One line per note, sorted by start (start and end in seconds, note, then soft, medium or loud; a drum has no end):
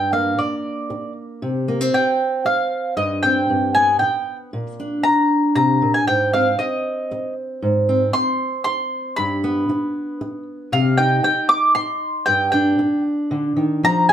0.00 0.37 G2 medium
0.00 0.13 G5 medium
0.13 1.42 A#3 soft
0.13 0.39 F5 medium
0.38 1.12 D5 medium
0.38 muted steel-string acoustic guitar stroke medium
0.90 muted steel-string acoustic guitar stroke medium
1.42 1.92 C3 medium
1.68 1.81 A#3 medium
1.81 2.97 C4 soft
1.93 2.45 G5 medium
1.93 muted steel-string acoustic guitar stroke medium
2.45 2.94 F5 medium
2.45 muted steel-string acoustic guitar stroke medium
2.97 3.48 G2 medium
2.97 3.24 D#5 medium
3.23 3.47 C4 medium
3.23 3.74 G5 medium
3.50 4.01 G2 medium
3.75 4.50 B3 soft
3.75 3.99 G#5 medium
3.99 4.36 G5 medium
3.99 muted steel-string acoustic guitar stroke medium
4.53 5.03 A#2 medium
4.80 6.05 D4 medium
5.04 5.54 A#5 medium
5.04 muted steel-string acoustic guitar stroke medium
5.55 5.82 C3 medium
5.55 5.94 A#5 medium
5.82 6.07 A#2 medium
5.94 6.07 G#5 medium
6.07 6.58 G#2 medium
6.07 6.33 G5 medium
6.33 7.60 C4 medium
6.33 6.60 F5 medium
6.59 7.33 D#5 medium
6.59 muted steel-string acoustic guitar stroke medium
7.11 muted steel-string acoustic guitar stroke medium
7.62 8.13 G#2 medium
7.89 9.15 C4 medium
8.13 8.63 C6 medium
8.13 muted steel-string acoustic guitar stroke medium
8.64 9.16 C6 medium
8.64 muted steel-string acoustic guitar stroke medium
9.16 9.68 G2 medium
9.16 10.42 B5 medium
9.44 10.70 B3 medium
9.69 muted steel-string acoustic guitar stroke medium
10.21 muted steel-string acoustic guitar stroke medium
10.72 11.23 C3 medium
10.72 11.00 F5 medium
10.97 12.25 D#4 medium
10.97 11.23 G5 medium
11.23 11.49 G5 medium
11.23 muted steel-string acoustic guitar stroke medium
11.49 11.74 D6 loud
11.75 12.24 C6 medium
11.75 muted steel-string acoustic guitar stroke medium
12.26 12.77 G2 medium
12.26 12.51 G5 medium
12.52 14.13 D4 medium
12.52 13.01 G5 medium
12.79 muted steel-string acoustic guitar stroke medium
13.31 13.56 D3 medium
13.56 13.82 D#3 medium
13.83 14.13 F3 medium
13.83 14.09 A#5 loud
14.09 14.13 G#4 medium
14.09 14.13 G#5 medium